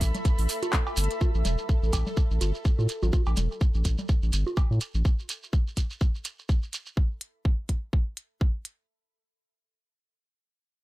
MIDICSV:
0, 0, Header, 1, 6, 480
1, 0, Start_track
1, 0, Tempo, 480000
1, 1210, Time_signature, 4, 2, 24, 8
1, 10833, End_track
2, 0, Start_track
2, 0, Title_t, "Ambient pad"
2, 0, Program_c, 0, 92
2, 0, Note_on_c, 0, 69, 74
2, 0, Note_on_c, 0, 76, 75
2, 0, Note_on_c, 0, 83, 92
2, 3130, Note_off_c, 0, 69, 0
2, 3130, Note_off_c, 0, 76, 0
2, 3130, Note_off_c, 0, 83, 0
2, 10833, End_track
3, 0, Start_track
3, 0, Title_t, "Synth texture"
3, 0, Program_c, 1, 99
3, 1210, Note_on_c, 1, 69, 84
3, 3141, Note_off_c, 1, 69, 0
3, 10833, End_track
4, 0, Start_track
4, 0, Title_t, "Sub bass"
4, 0, Program_c, 2, 38
4, 10, Note_on_c, 2, 33, 90
4, 124, Note_off_c, 2, 33, 0
4, 386, Note_on_c, 2, 33, 80
4, 473, Note_off_c, 2, 33, 0
4, 971, Note_on_c, 2, 31, 96
4, 1084, Note_off_c, 2, 31, 0
4, 1347, Note_on_c, 2, 33, 102
4, 1434, Note_off_c, 2, 33, 0
4, 1451, Note_on_c, 2, 28, 103
4, 1564, Note_off_c, 2, 28, 0
4, 1826, Note_on_c, 2, 33, 97
4, 1913, Note_off_c, 2, 33, 0
4, 1931, Note_on_c, 2, 33, 89
4, 2044, Note_off_c, 2, 33, 0
4, 2307, Note_on_c, 2, 33, 77
4, 2394, Note_off_c, 2, 33, 0
4, 2411, Note_on_c, 2, 31, 79
4, 2524, Note_off_c, 2, 31, 0
4, 2786, Note_on_c, 2, 45, 92
4, 2873, Note_off_c, 2, 45, 0
4, 3026, Note_on_c, 2, 33, 98
4, 3114, Note_off_c, 2, 33, 0
4, 3266, Note_on_c, 2, 33, 99
4, 3353, Note_off_c, 2, 33, 0
4, 3371, Note_on_c, 2, 28, 101
4, 3484, Note_off_c, 2, 28, 0
4, 3746, Note_on_c, 2, 33, 96
4, 3833, Note_off_c, 2, 33, 0
4, 3851, Note_on_c, 2, 33, 88
4, 3964, Note_off_c, 2, 33, 0
4, 4226, Note_on_c, 2, 33, 78
4, 4313, Note_off_c, 2, 33, 0
4, 4331, Note_on_c, 2, 31, 83
4, 4444, Note_off_c, 2, 31, 0
4, 4707, Note_on_c, 2, 45, 96
4, 4794, Note_off_c, 2, 45, 0
4, 4946, Note_on_c, 2, 33, 93
4, 5033, Note_off_c, 2, 33, 0
4, 10833, End_track
5, 0, Start_track
5, 0, Title_t, "Shekere"
5, 14, Note_on_c, 9, 82, 85
5, 114, Note_off_c, 9, 82, 0
5, 149, Note_on_c, 9, 82, 34
5, 249, Note_off_c, 9, 82, 0
5, 251, Note_on_c, 9, 82, 51
5, 351, Note_off_c, 9, 82, 0
5, 382, Note_on_c, 9, 82, 28
5, 482, Note_off_c, 9, 82, 0
5, 489, Note_on_c, 9, 82, 94
5, 589, Note_off_c, 9, 82, 0
5, 623, Note_on_c, 9, 82, 40
5, 723, Note_off_c, 9, 82, 0
5, 732, Note_on_c, 9, 82, 52
5, 832, Note_off_c, 9, 82, 0
5, 868, Note_on_c, 9, 82, 24
5, 966, Note_off_c, 9, 82, 0
5, 966, Note_on_c, 9, 82, 100
5, 1066, Note_off_c, 9, 82, 0
5, 1108, Note_on_c, 9, 82, 42
5, 1208, Note_off_c, 9, 82, 0
5, 1209, Note_on_c, 9, 82, 51
5, 1309, Note_off_c, 9, 82, 0
5, 1346, Note_on_c, 9, 82, 25
5, 1446, Note_off_c, 9, 82, 0
5, 1453, Note_on_c, 9, 82, 90
5, 1553, Note_off_c, 9, 82, 0
5, 1583, Note_on_c, 9, 82, 42
5, 1683, Note_off_c, 9, 82, 0
5, 1695, Note_on_c, 9, 82, 55
5, 1795, Note_off_c, 9, 82, 0
5, 1832, Note_on_c, 9, 82, 27
5, 1930, Note_off_c, 9, 82, 0
5, 1930, Note_on_c, 9, 82, 93
5, 2030, Note_off_c, 9, 82, 0
5, 2069, Note_on_c, 9, 82, 39
5, 2168, Note_off_c, 9, 82, 0
5, 2168, Note_on_c, 9, 82, 53
5, 2268, Note_off_c, 9, 82, 0
5, 2310, Note_on_c, 9, 82, 25
5, 2410, Note_off_c, 9, 82, 0
5, 2414, Note_on_c, 9, 82, 95
5, 2514, Note_off_c, 9, 82, 0
5, 2545, Note_on_c, 9, 82, 39
5, 2645, Note_off_c, 9, 82, 0
5, 2652, Note_on_c, 9, 82, 54
5, 2752, Note_off_c, 9, 82, 0
5, 2793, Note_on_c, 9, 82, 25
5, 2891, Note_off_c, 9, 82, 0
5, 2891, Note_on_c, 9, 82, 84
5, 2991, Note_off_c, 9, 82, 0
5, 3025, Note_on_c, 9, 82, 37
5, 3125, Note_off_c, 9, 82, 0
5, 3126, Note_on_c, 9, 82, 57
5, 3226, Note_off_c, 9, 82, 0
5, 3259, Note_on_c, 9, 82, 27
5, 3359, Note_off_c, 9, 82, 0
5, 3367, Note_on_c, 9, 82, 88
5, 3467, Note_off_c, 9, 82, 0
5, 3515, Note_on_c, 9, 82, 36
5, 3610, Note_off_c, 9, 82, 0
5, 3610, Note_on_c, 9, 82, 57
5, 3710, Note_off_c, 9, 82, 0
5, 3742, Note_on_c, 9, 82, 28
5, 3842, Note_off_c, 9, 82, 0
5, 3848, Note_on_c, 9, 82, 95
5, 3948, Note_off_c, 9, 82, 0
5, 3980, Note_on_c, 9, 82, 40
5, 4080, Note_off_c, 9, 82, 0
5, 4085, Note_on_c, 9, 82, 57
5, 4185, Note_off_c, 9, 82, 0
5, 4225, Note_on_c, 9, 82, 27
5, 4325, Note_off_c, 9, 82, 0
5, 4328, Note_on_c, 9, 82, 98
5, 4428, Note_off_c, 9, 82, 0
5, 4468, Note_on_c, 9, 82, 36
5, 4567, Note_off_c, 9, 82, 0
5, 4567, Note_on_c, 9, 82, 49
5, 4667, Note_off_c, 9, 82, 0
5, 4716, Note_on_c, 9, 82, 24
5, 4807, Note_off_c, 9, 82, 0
5, 4807, Note_on_c, 9, 82, 87
5, 4907, Note_off_c, 9, 82, 0
5, 4945, Note_on_c, 9, 82, 42
5, 5045, Note_off_c, 9, 82, 0
5, 5050, Note_on_c, 9, 82, 58
5, 5150, Note_off_c, 9, 82, 0
5, 5192, Note_on_c, 9, 82, 26
5, 5292, Note_off_c, 9, 82, 0
5, 5294, Note_on_c, 9, 82, 93
5, 5394, Note_off_c, 9, 82, 0
5, 5432, Note_on_c, 9, 82, 41
5, 5531, Note_off_c, 9, 82, 0
5, 5531, Note_on_c, 9, 82, 57
5, 5631, Note_off_c, 9, 82, 0
5, 5676, Note_on_c, 9, 82, 25
5, 5771, Note_off_c, 9, 82, 0
5, 5771, Note_on_c, 9, 82, 92
5, 5871, Note_off_c, 9, 82, 0
5, 5904, Note_on_c, 9, 82, 41
5, 6004, Note_off_c, 9, 82, 0
5, 6007, Note_on_c, 9, 82, 49
5, 6107, Note_off_c, 9, 82, 0
5, 6150, Note_on_c, 9, 82, 24
5, 6248, Note_off_c, 9, 82, 0
5, 6248, Note_on_c, 9, 82, 98
5, 6347, Note_off_c, 9, 82, 0
5, 6388, Note_on_c, 9, 82, 42
5, 6488, Note_off_c, 9, 82, 0
5, 6492, Note_on_c, 9, 82, 54
5, 6592, Note_off_c, 9, 82, 0
5, 6627, Note_on_c, 9, 82, 27
5, 6727, Note_off_c, 9, 82, 0
5, 6736, Note_on_c, 9, 82, 94
5, 6836, Note_off_c, 9, 82, 0
5, 6860, Note_on_c, 9, 82, 37
5, 6960, Note_off_c, 9, 82, 0
5, 10833, End_track
6, 0, Start_track
6, 0, Title_t, "Drums"
6, 10, Note_on_c, 9, 36, 61
6, 10, Note_on_c, 9, 46, 86
6, 110, Note_off_c, 9, 36, 0
6, 110, Note_off_c, 9, 46, 0
6, 146, Note_on_c, 9, 42, 47
6, 147, Note_on_c, 9, 64, 84
6, 246, Note_off_c, 9, 42, 0
6, 247, Note_off_c, 9, 64, 0
6, 250, Note_on_c, 9, 36, 115
6, 250, Note_on_c, 9, 42, 58
6, 350, Note_off_c, 9, 36, 0
6, 351, Note_off_c, 9, 42, 0
6, 386, Note_on_c, 9, 46, 51
6, 486, Note_off_c, 9, 46, 0
6, 491, Note_on_c, 9, 46, 94
6, 591, Note_off_c, 9, 46, 0
6, 626, Note_on_c, 9, 42, 44
6, 626, Note_on_c, 9, 61, 79
6, 726, Note_off_c, 9, 42, 0
6, 726, Note_off_c, 9, 61, 0
6, 731, Note_on_c, 9, 36, 116
6, 731, Note_on_c, 9, 39, 109
6, 731, Note_on_c, 9, 42, 57
6, 831, Note_off_c, 9, 36, 0
6, 831, Note_off_c, 9, 39, 0
6, 831, Note_off_c, 9, 42, 0
6, 867, Note_on_c, 9, 56, 70
6, 967, Note_off_c, 9, 56, 0
6, 971, Note_on_c, 9, 46, 90
6, 1038, Note_on_c, 9, 42, 54
6, 1071, Note_off_c, 9, 46, 0
6, 1106, Note_off_c, 9, 42, 0
6, 1106, Note_on_c, 9, 42, 45
6, 1206, Note_off_c, 9, 42, 0
6, 1211, Note_on_c, 9, 36, 118
6, 1211, Note_on_c, 9, 61, 77
6, 1311, Note_off_c, 9, 36, 0
6, 1311, Note_off_c, 9, 61, 0
6, 1450, Note_on_c, 9, 42, 88
6, 1451, Note_on_c, 9, 64, 84
6, 1550, Note_off_c, 9, 42, 0
6, 1551, Note_off_c, 9, 64, 0
6, 1691, Note_on_c, 9, 36, 118
6, 1791, Note_off_c, 9, 36, 0
6, 1931, Note_on_c, 9, 36, 61
6, 1931, Note_on_c, 9, 42, 88
6, 1931, Note_on_c, 9, 56, 65
6, 2031, Note_off_c, 9, 36, 0
6, 2031, Note_off_c, 9, 42, 0
6, 2031, Note_off_c, 9, 56, 0
6, 2066, Note_on_c, 9, 64, 83
6, 2166, Note_off_c, 9, 64, 0
6, 2171, Note_on_c, 9, 36, 113
6, 2271, Note_off_c, 9, 36, 0
6, 2411, Note_on_c, 9, 42, 91
6, 2411, Note_on_c, 9, 61, 53
6, 2511, Note_off_c, 9, 42, 0
6, 2511, Note_off_c, 9, 61, 0
6, 2651, Note_on_c, 9, 36, 121
6, 2751, Note_off_c, 9, 36, 0
6, 2786, Note_on_c, 9, 61, 51
6, 2886, Note_off_c, 9, 61, 0
6, 2890, Note_on_c, 9, 42, 92
6, 2990, Note_off_c, 9, 42, 0
6, 3026, Note_on_c, 9, 61, 78
6, 3026, Note_on_c, 9, 64, 82
6, 3126, Note_off_c, 9, 61, 0
6, 3126, Note_off_c, 9, 64, 0
6, 3131, Note_on_c, 9, 36, 118
6, 3131, Note_on_c, 9, 61, 81
6, 3231, Note_off_c, 9, 36, 0
6, 3231, Note_off_c, 9, 61, 0
6, 3266, Note_on_c, 9, 56, 61
6, 3367, Note_off_c, 9, 56, 0
6, 3371, Note_on_c, 9, 42, 88
6, 3371, Note_on_c, 9, 64, 85
6, 3471, Note_off_c, 9, 42, 0
6, 3471, Note_off_c, 9, 64, 0
6, 3611, Note_on_c, 9, 36, 124
6, 3711, Note_off_c, 9, 36, 0
6, 3850, Note_on_c, 9, 36, 63
6, 3850, Note_on_c, 9, 42, 91
6, 3950, Note_off_c, 9, 36, 0
6, 3950, Note_off_c, 9, 42, 0
6, 3986, Note_on_c, 9, 64, 85
6, 4086, Note_off_c, 9, 64, 0
6, 4090, Note_on_c, 9, 36, 117
6, 4190, Note_off_c, 9, 36, 0
6, 4330, Note_on_c, 9, 42, 93
6, 4430, Note_off_c, 9, 42, 0
6, 4466, Note_on_c, 9, 61, 80
6, 4566, Note_off_c, 9, 61, 0
6, 4570, Note_on_c, 9, 36, 123
6, 4570, Note_on_c, 9, 56, 58
6, 4670, Note_off_c, 9, 36, 0
6, 4670, Note_off_c, 9, 56, 0
6, 4810, Note_on_c, 9, 42, 94
6, 4910, Note_off_c, 9, 42, 0
6, 5051, Note_on_c, 9, 36, 121
6, 5151, Note_off_c, 9, 36, 0
6, 5290, Note_on_c, 9, 42, 95
6, 5390, Note_off_c, 9, 42, 0
6, 5531, Note_on_c, 9, 36, 119
6, 5631, Note_off_c, 9, 36, 0
6, 5770, Note_on_c, 9, 42, 91
6, 5771, Note_on_c, 9, 36, 62
6, 5870, Note_off_c, 9, 42, 0
6, 5871, Note_off_c, 9, 36, 0
6, 6011, Note_on_c, 9, 36, 122
6, 6111, Note_off_c, 9, 36, 0
6, 6250, Note_on_c, 9, 42, 96
6, 6350, Note_off_c, 9, 42, 0
6, 6491, Note_on_c, 9, 36, 120
6, 6591, Note_off_c, 9, 36, 0
6, 6730, Note_on_c, 9, 42, 94
6, 6830, Note_off_c, 9, 42, 0
6, 6971, Note_on_c, 9, 36, 117
6, 7071, Note_off_c, 9, 36, 0
6, 7211, Note_on_c, 9, 42, 87
6, 7311, Note_off_c, 9, 42, 0
6, 7451, Note_on_c, 9, 36, 115
6, 7551, Note_off_c, 9, 36, 0
6, 7691, Note_on_c, 9, 36, 59
6, 7691, Note_on_c, 9, 42, 91
6, 7791, Note_off_c, 9, 36, 0
6, 7791, Note_off_c, 9, 42, 0
6, 7931, Note_on_c, 9, 36, 114
6, 8031, Note_off_c, 9, 36, 0
6, 8170, Note_on_c, 9, 42, 95
6, 8270, Note_off_c, 9, 42, 0
6, 8411, Note_on_c, 9, 36, 122
6, 8511, Note_off_c, 9, 36, 0
6, 8650, Note_on_c, 9, 42, 94
6, 8750, Note_off_c, 9, 42, 0
6, 10833, End_track
0, 0, End_of_file